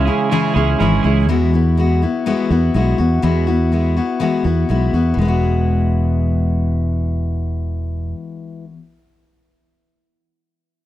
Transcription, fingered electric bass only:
0, 0, Header, 1, 2, 480
1, 0, Start_track
1, 0, Key_signature, 4, "major"
1, 0, Tempo, 487805
1, 1254, Time_signature, 4, 2, 24, 8
1, 10680, End_track
2, 0, Start_track
2, 0, Title_t, "Fingered electric bass"
2, 0, Program_c, 0, 33
2, 549, Note_on_c, 0, 37, 81
2, 730, Note_off_c, 0, 37, 0
2, 793, Note_on_c, 0, 32, 78
2, 973, Note_off_c, 0, 32, 0
2, 1030, Note_on_c, 0, 37, 78
2, 1268, Note_off_c, 0, 37, 0
2, 1268, Note_on_c, 0, 40, 84
2, 2009, Note_off_c, 0, 40, 0
2, 2464, Note_on_c, 0, 40, 75
2, 2646, Note_off_c, 0, 40, 0
2, 2703, Note_on_c, 0, 35, 75
2, 2885, Note_off_c, 0, 35, 0
2, 2946, Note_on_c, 0, 40, 68
2, 3127, Note_off_c, 0, 40, 0
2, 3181, Note_on_c, 0, 40, 78
2, 3926, Note_off_c, 0, 40, 0
2, 4377, Note_on_c, 0, 40, 70
2, 4562, Note_off_c, 0, 40, 0
2, 4624, Note_on_c, 0, 35, 71
2, 4806, Note_off_c, 0, 35, 0
2, 4852, Note_on_c, 0, 40, 69
2, 5039, Note_off_c, 0, 40, 0
2, 5087, Note_on_c, 0, 28, 79
2, 8000, Note_off_c, 0, 28, 0
2, 10680, End_track
0, 0, End_of_file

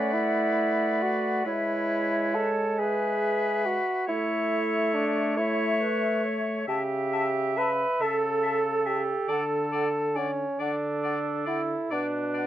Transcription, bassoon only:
0, 0, Header, 1, 2, 480
1, 0, Start_track
1, 0, Key_signature, 3, "major"
1, 0, Tempo, 884956
1, 790, Time_signature, 6, 3, 24, 8
1, 1750, Tempo, 867052
1, 3662, Key_signature, 2, "major"
1, 6070, Tempo, 890208
1, 6845, End_track
2, 0, Start_track
2, 0, Title_t, "Bassoon"
2, 0, Program_c, 0, 70
2, 0, Note_on_c, 0, 61, 80
2, 71, Note_on_c, 0, 64, 89
2, 79, Note_off_c, 0, 61, 0
2, 554, Note_on_c, 0, 66, 77
2, 562, Note_off_c, 0, 64, 0
2, 789, Note_off_c, 0, 66, 0
2, 792, Note_on_c, 0, 64, 91
2, 1275, Note_on_c, 0, 69, 91
2, 1283, Note_off_c, 0, 64, 0
2, 1515, Note_on_c, 0, 68, 79
2, 1523, Note_off_c, 0, 69, 0
2, 1988, Note_on_c, 0, 66, 92
2, 1996, Note_off_c, 0, 68, 0
2, 2222, Note_off_c, 0, 66, 0
2, 2225, Note_on_c, 0, 64, 90
2, 2698, Note_on_c, 0, 62, 83
2, 2706, Note_off_c, 0, 64, 0
2, 2941, Note_on_c, 0, 64, 82
2, 2949, Note_off_c, 0, 62, 0
2, 3180, Note_off_c, 0, 64, 0
2, 3664, Note_on_c, 0, 67, 91
2, 4157, Note_on_c, 0, 71, 98
2, 4166, Note_off_c, 0, 67, 0
2, 4400, Note_on_c, 0, 69, 88
2, 4408, Note_off_c, 0, 71, 0
2, 4874, Note_on_c, 0, 67, 83
2, 4882, Note_off_c, 0, 69, 0
2, 5111, Note_on_c, 0, 69, 94
2, 5120, Note_off_c, 0, 67, 0
2, 5593, Note_on_c, 0, 61, 89
2, 5601, Note_off_c, 0, 69, 0
2, 5835, Note_on_c, 0, 62, 79
2, 5843, Note_off_c, 0, 61, 0
2, 6305, Note_off_c, 0, 62, 0
2, 6308, Note_on_c, 0, 64, 78
2, 6549, Note_on_c, 0, 62, 77
2, 6557, Note_off_c, 0, 64, 0
2, 6845, Note_off_c, 0, 62, 0
2, 6845, End_track
0, 0, End_of_file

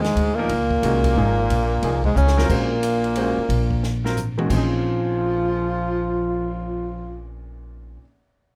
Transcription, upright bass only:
0, 0, Header, 1, 3, 480
1, 0, Start_track
1, 0, Key_signature, -5, "minor"
1, 0, Tempo, 333519
1, 717, Time_signature, 3, 2, 24, 8
1, 12314, End_track
2, 0, Start_track
2, 0, Title_t, "Upright bass"
2, 0, Program_c, 0, 32
2, 0, Note_on_c, 0, 39, 81
2, 214, Note_off_c, 0, 39, 0
2, 222, Note_on_c, 0, 38, 81
2, 694, Note_off_c, 0, 38, 0
2, 717, Note_on_c, 0, 37, 78
2, 1182, Note_off_c, 0, 37, 0
2, 1192, Note_on_c, 0, 36, 72
2, 1659, Note_off_c, 0, 36, 0
2, 1671, Note_on_c, 0, 32, 80
2, 2138, Note_off_c, 0, 32, 0
2, 2154, Note_on_c, 0, 34, 73
2, 2616, Note_off_c, 0, 34, 0
2, 2625, Note_on_c, 0, 36, 75
2, 3095, Note_off_c, 0, 36, 0
2, 3107, Note_on_c, 0, 37, 90
2, 3576, Note_off_c, 0, 37, 0
2, 3593, Note_on_c, 0, 34, 71
2, 4799, Note_off_c, 0, 34, 0
2, 5018, Note_on_c, 0, 34, 73
2, 6408, Note_off_c, 0, 34, 0
2, 6471, Note_on_c, 0, 34, 78
2, 11454, Note_off_c, 0, 34, 0
2, 12314, End_track
3, 0, Start_track
3, 0, Title_t, "Muted upright bass strokes"
3, 4853, Note_on_c, 9, 29, 40
3, 4997, Note_off_c, 9, 29, 0
3, 12314, End_track
0, 0, End_of_file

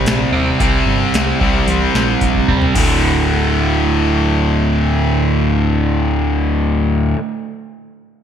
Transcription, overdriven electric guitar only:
0, 0, Header, 1, 2, 480
1, 0, Start_track
1, 0, Tempo, 541028
1, 529, Time_signature, 4, 2, 24, 8
1, 7304, End_track
2, 0, Start_track
2, 0, Title_t, "Overdriven electric guitar"
2, 0, Program_c, 0, 29
2, 0, Note_on_c, 0, 48, 89
2, 0, Note_on_c, 0, 55, 97
2, 0, Note_on_c, 0, 60, 94
2, 272, Note_off_c, 0, 48, 0
2, 279, Note_off_c, 0, 60, 0
2, 281, Note_off_c, 0, 55, 0
2, 290, Note_on_c, 0, 60, 68
2, 306, Note_on_c, 0, 55, 68
2, 318, Note_on_c, 0, 48, 65
2, 515, Note_off_c, 0, 60, 0
2, 520, Note_off_c, 0, 48, 0
2, 523, Note_off_c, 0, 55, 0
2, 531, Note_on_c, 0, 48, 79
2, 544, Note_on_c, 0, 55, 78
2, 554, Note_on_c, 0, 60, 98
2, 2192, Note_off_c, 0, 60, 0
2, 2194, Note_off_c, 0, 48, 0
2, 2201, Note_off_c, 0, 55, 0
2, 2203, Note_on_c, 0, 60, 65
2, 2216, Note_on_c, 0, 55, 72
2, 2228, Note_on_c, 0, 48, 55
2, 2431, Note_off_c, 0, 60, 0
2, 2432, Note_off_c, 0, 48, 0
2, 2436, Note_on_c, 0, 38, 88
2, 2437, Note_off_c, 0, 55, 0
2, 2457, Note_on_c, 0, 45, 78
2, 2472, Note_on_c, 0, 50, 90
2, 6351, Note_off_c, 0, 38, 0
2, 6372, Note_off_c, 0, 45, 0
2, 6388, Note_off_c, 0, 50, 0
2, 7304, End_track
0, 0, End_of_file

